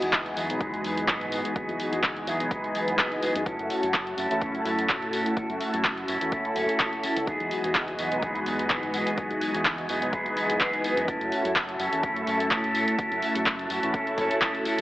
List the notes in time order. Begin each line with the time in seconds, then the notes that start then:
Already playing: E3 G#3 D#4 F#4 D#5 G#5
0.01 E2 B3 D#4 G#4, closed hi-hat
0.13 kick, clap, closed hi-hat
0.26 closed hi-hat
0.36 E2 F#3 B3 D#4 G#4, open hi-hat
0.49 B1 E3 G#3 D#4 B4, closed hi-hat
0.60 F#3 B3 D#4 G#4, kick, closed hi-hat
0.73 E2 B3 D#4 G#4, closed hi-hat
0.84 E2 F#3 B3 D#4 G#4, open hi-hat
0.97 closed hi-hat
1.08 G#2 F#3 B3 D#4 G#4, kick, clap, closed hi-hat
1.21 closed hi-hat
1.31 F#3 B3 D#4 G#4, open hi-hat
1.44 B3 D#4 G#4, closed hi-hat
1.55 E3 F#3 G#3 B3 D#4 F#4 G#4, kick, closed hi-hat
1.69 E2, closed hi-hat
1.80 open hi-hat
1.92 E2 B3 D#4 G#4, closed hi-hat
2.03 kick, clap, closed hi-hat
2.17 closed hi-hat
2.26 E2 F#3 B3 D#4 G#4, open hi-hat
2.39 B1 E3 G#3 D#4 B4, closed hi-hat
2.50 F#3 B3 D#4 G#4, kick, closed hi-hat
2.63 B3 D#4 G#4, closed hi-hat
2.74 F#3 B3 D#4 G#4, open hi-hat
2.88 E1, closed hi-hat
2.98 F#3 B3 D#4 G#4, kick, clap, closed hi-hat
3.11 B3 D#4 G#4, closed hi-hat
3.22 F#3 B3 D#4 G#4, muted fingered electric bass stroke, open hi-hat
3.34 F#2 B3 D#4 G#4, closed hi-hat
3.46 A3 C#4 E4 F#4 A4 E5 A5, kick, closed hi-hat
3.59 F#2, closed hi-hat
3.70 open hi-hat
3.82 F#2 E4 A4, closed hi-hat
3.94 kick, clap, closed hi-hat
4.07 closed hi-hat
4.17 F#2 C#4 E4 A4, open hi-hat
4.30 E2 A3 C#4 E4 A4, closed hi-hat
4.41 C#4 E4 A4, kick, closed hi-hat
4.54 F#2 E4 A4, closed hi-hat
4.64 F#2 C#4 E4 A4, open hi-hat
4.79 closed hi-hat
4.89 A2 C#4 E4 A4, kick, clap, closed hi-hat
5.01 E4 A4, closed hi-hat
5.12 C#4 E4 A4, open hi-hat
5.25 E4 A4, closed hi-hat
5.36 A3 C#4 E4 F#4 A4, kick, closed hi-hat
5.50 F#2, closed hi-hat
5.61 open hi-hat
5.73 F#2 E4 A4, closed hi-hat
5.84 kick, clap, closed hi-hat
5.97 closed hi-hat
6.08 F#2 C#4 E4 A4, open hi-hat
6.20 E2 A3 C#4 E4 A4, closed hi-hat
6.32 C#4 E4 A4, kick, closed hi-hat
6.44 E4 A4, muted fingered electric bass stroke, closed hi-hat
6.55 F#1 C#4 E4 A4, open hi-hat
6.69 closed hi-hat
6.80 A4, kick, clap, closed hi-hat
6.92 A4, closed hi-hat
7.03 C#4 E4 A4, muted fingered electric bass stroke, open hi-hat
7.16 C#2 E4 A4, closed hi-hat
7.27 E3 F#3 G#3 B3 D#4 F#4 G#4 D#5 G#5, muted fingered electric bass stroke, kick, closed hi-hat
7.40 E2, closed hi-hat
7.51 open hi-hat
7.64 E2 B3 D#4 G#4, closed hi-hat
7.75 kick, clap, closed hi-hat
7.88 closed hi-hat
7.98 E2 F#3 B3 D#4 G#4, open hi-hat
8.11 B1 E3 G#3 D#4 B4, closed hi-hat
8.22 F#3 B3 D#4 G#4, kick, closed hi-hat
8.35 E2 B3 D#4 G#4, closed hi-hat
8.46 E2 F#3 B3 D#4 G#4, open hi-hat
8.59 closed hi-hat
8.70 G#2 F#3 B3 D#4 G#4, kick, clap, closed hi-hat
8.82 B3 D#4 G#4, closed hi-hat
8.93 F#3 B3 D#4 G#4, open hi-hat
9.06 B3 D#4 G#4, closed hi-hat
9.17 E3 F#3 G#3 B3 D#4 F#4 G#4, kick, closed hi-hat
9.31 E2, closed hi-hat
9.41 open hi-hat
9.54 E2 B3 D#4 G#4, closed hi-hat
9.65 kick, clap, closed hi-hat
9.78 closed hi-hat
9.88 E2 F#3 B3 D#4 G#4, open hi-hat
10.01 B1 E3 G#3 D#4 B4, closed hi-hat
10.12 F#3 B3 D#4 G#4, kick, closed hi-hat
10.25 B3 D#4 G#4, closed hi-hat
10.36 F#3 B3 D#4 G#4, open hi-hat
10.50 E1, closed hi-hat
10.60 F#3 B3 D#4 G#4, kick, clap, closed hi-hat
10.73 B3 D#4 G#4, closed hi-hat
10.84 F#3 B3 D#4 G#4, muted fingered electric bass stroke, open hi-hat
10.97 F#2 B3 D#4 G#4, closed hi-hat
11.07 A3 C#4 E4 F#4 A4 E5 A5, kick, closed hi-hat
11.21 F#2, closed hi-hat
11.32 open hi-hat
11.44 F#2 E4 A4, closed hi-hat
11.56 kick, clap, closed hi-hat
11.69 closed hi-hat
11.79 F#2 C#4 E4 A4, open hi-hat
11.92 E2 A3 C#4 E4 A4, closed hi-hat
12.03 C#4 E4 A4, kick, closed hi-hat
12.16 F#2 E4 A4, closed hi-hat
12.26 F#2 C#4 E4 A4, open hi-hat
12.39 E4 A4, closed hi-hat
12.51 A2 C#4 E4 A4, kick, clap, closed hi-hat
12.64 closed hi-hat
12.74 C#4 E4 A4, open hi-hat
12.87 E4 A4, closed hi-hat
12.98 A3 C#4 E4 F#4 A4, muted fingered electric bass stroke, kick, closed hi-hat
13.12 F#2, closed hi-hat
13.22 open hi-hat
13.35 F#2 E4 A4, closed hi-hat
13.46 kick, clap, closed hi-hat
13.59 closed hi-hat
13.70 F#2 C#4 E4 A4, open hi-hat
13.82 E2 A3 C#4 E4 A4, closed hi-hat
13.93 C#4 E4 A4, kick, closed hi-hat
14.06 E4 A4, muted fingered electric bass stroke, closed hi-hat
14.17 F#1 C#4 E4 A4, kick, open hi-hat
14.30 E4 A4, closed hi-hat
14.41 C#4 E4 A4, kick, clap, closed hi-hat
14.54 E4 A4, closed hi-hat
14.65 C#4 E4 A4, muted fingered electric bass stroke, open hi-hat
14.78 A4